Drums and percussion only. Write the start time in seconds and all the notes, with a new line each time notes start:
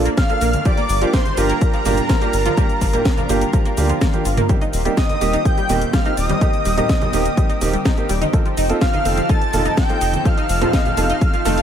0.05 closed hi-hat, cabasa
0.17 kick, snare, closed hi-hat, cabasa
0.29 closed hi-hat, cabasa
0.41 open hi-hat, cabasa
0.53 closed hi-hat, high conga, cabasa
0.65 kick, closed hi-hat, cabasa
0.77 closed hi-hat, cabasa
0.89 open hi-hat, cabasa
1.02 closed hi-hat, cabasa
1.13 kick, snare, closed hi-hat, cabasa
1.25 closed hi-hat, high conga, cabasa
1.37 open hi-hat, cabasa
1.50 closed hi-hat, cabasa
1.61 kick, closed hi-hat, cabasa
1.74 closed hi-hat, cabasa
1.85 open hi-hat, high conga, low conga, cabasa
1.98 closed hi-hat, cabasa
2.09 kick, snare, closed hi-hat, cabasa
2.21 closed hi-hat, cabasa
2.33 open hi-hat, cabasa
2.46 closed hi-hat, high conga, cabasa
2.57 kick, closed hi-hat, cabasa
2.69 closed hi-hat, cabasa
2.81 kick, open hi-hat, cabasa
2.93 closed hi-hat, low conga, cabasa
3.05 kick, snare, closed hi-hat, cabasa
3.17 closed hi-hat, high conga, low conga, cabasa
3.29 open hi-hat, cabasa
3.41 closed hi-hat, cabasa
3.53 kick, closed hi-hat, cabasa
3.65 closed hi-hat, cabasa
3.77 open hi-hat, high conga, cabasa
3.89 closed hi-hat, cabasa
4.01 kick, snare, closed hi-hat, high tom, cabasa
4.13 closed hi-hat, high tom, cabasa
4.25 open hi-hat, cabasa
4.37 closed hi-hat, mid tom, high conga, cabasa
4.49 kick, closed hi-hat, cabasa
4.61 closed hi-hat, cabasa
4.73 open hi-hat, cabasa
4.85 closed hi-hat, cabasa
4.97 kick, snare, closed hi-hat, cabasa
5.09 closed hi-hat, high conga, cabasa
5.21 open hi-hat, cabasa
5.33 closed hi-hat, cabasa
5.45 kick, closed hi-hat, cabasa
5.58 closed hi-hat, cabasa
5.69 open hi-hat, high conga, low conga, cabasa
5.82 closed hi-hat, cabasa
5.93 kick, snare, closed hi-hat, cabasa
6.06 closed hi-hat, cabasa
6.17 open hi-hat, cabasa
6.29 closed hi-hat, high conga, cabasa
6.41 kick, closed hi-hat, cabasa
6.53 closed hi-hat, cabasa
6.65 open hi-hat, cabasa
6.78 closed hi-hat, low conga, cabasa
6.89 kick, snare, closed hi-hat, cabasa
7.01 closed hi-hat, high conga, low conga, cabasa
7.13 open hi-hat, cabasa
7.26 closed hi-hat, cabasa
7.37 kick, closed hi-hat, cabasa
7.50 closed hi-hat, cabasa
7.61 open hi-hat, high conga, cabasa
7.73 closed hi-hat, cabasa
7.85 kick, snare, closed hi-hat, cabasa
7.98 closed hi-hat, cabasa
8.09 open hi-hat, cabasa
8.22 closed hi-hat, high conga, cabasa
8.33 kick, closed hi-hat, cabasa
8.46 closed hi-hat, cabasa
8.57 open hi-hat, cabasa
8.70 closed hi-hat, cabasa
8.81 kick, snare, closed hi-hat, cabasa
8.93 closed hi-hat, high conga, cabasa
9.05 open hi-hat, cabasa
9.17 closed hi-hat, cabasa
9.29 kick, closed hi-hat, cabasa
9.42 closed hi-hat, cabasa
9.53 open hi-hat, high conga, low conga, cabasa
9.65 closed hi-hat, cabasa
9.77 kick, snare, closed hi-hat, cabasa
9.89 closed hi-hat, cabasa
10.01 open hi-hat, cabasa
10.13 closed hi-hat, high conga, cabasa
10.25 kick, closed hi-hat, cabasa
10.38 closed hi-hat, cabasa
10.49 open hi-hat, cabasa
10.62 closed hi-hat, low conga, cabasa
10.73 kick, snare, closed hi-hat, cabasa
10.85 closed hi-hat, high conga, low conga, cabasa
10.97 open hi-hat, cabasa
11.10 closed hi-hat, cabasa
11.21 kick, closed hi-hat, cabasa
11.34 closed hi-hat, cabasa
11.45 open hi-hat, high conga, cabasa
11.58 closed hi-hat, cabasa